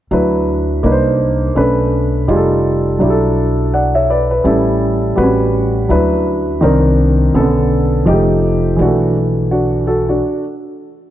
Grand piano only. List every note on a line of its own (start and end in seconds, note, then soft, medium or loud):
0.11 0.84 F#3 medium
0.11 0.82 D4 medium
0.11 0.84 E4 soft
0.11 0.84 B4 medium
0.83 1.56 A#3 medium
0.83 1.55 D4 medium
0.83 1.57 D#4 medium
0.83 0.93 B4 medium
0.92 1.60 C5 medium
1.55 2.28 A3 medium
1.55 2.28 C#4 medium
1.55 2.29 D4 medium
1.55 2.29 B4 medium
2.28 3.00 G3 medium
2.28 3.01 D#4 medium
2.28 3.01 F4 medium
2.28 2.37 G#4 medium
2.36 3.05 A4 medium
2.99 4.41 F#3 medium
2.99 4.42 D4 medium
2.99 4.43 E4 medium
3.03 3.10 G4 soft
3.10 4.45 A4 medium
3.74 3.94 D5 soft
3.74 3.94 F#5 medium
3.95 4.09 C#5 soft
3.95 4.09 E5 medium
4.10 4.29 B4 medium
4.10 4.30 D5 medium
4.31 4.65 B4 medium
4.44 5.14 G3 medium
4.44 5.17 C#4 medium
4.44 5.18 E4 medium
4.44 5.18 A4 medium
5.16 5.89 G3 medium
5.16 5.25 C4 soft
5.16 5.90 F#4 medium
5.16 5.90 B4 medium
5.23 5.93 C#4 medium
5.89 6.62 F#3 medium
5.89 6.61 D4 medium
5.89 6.62 E4 medium
5.89 6.63 B4 medium
6.61 7.34 D#3 medium
6.61 7.34 C4 medium
6.61 7.35 D4 medium
6.61 7.35 A#4 medium
7.34 7.42 C#3 soft
7.34 8.07 B3 medium
7.34 8.07 C#4 medium
7.34 8.08 A4 medium
7.40 8.10 D3 medium
8.05 8.78 F3 medium
8.05 8.14 G#3 soft
8.05 8.79 D#4 medium
8.05 8.80 G4 medium
8.13 8.82 A3 medium
8.77 10.19 E3 medium
8.77 8.86 G#3 soft
8.77 9.15 D4 medium
8.81 10.24 A3 medium
8.81 9.16 F#4 medium
9.51 9.86 D4 soft
9.51 9.86 F#4 medium
9.87 10.07 F#4 soft
9.87 10.07 A4 medium
10.09 10.44 D4 soft
10.09 10.43 F#4 medium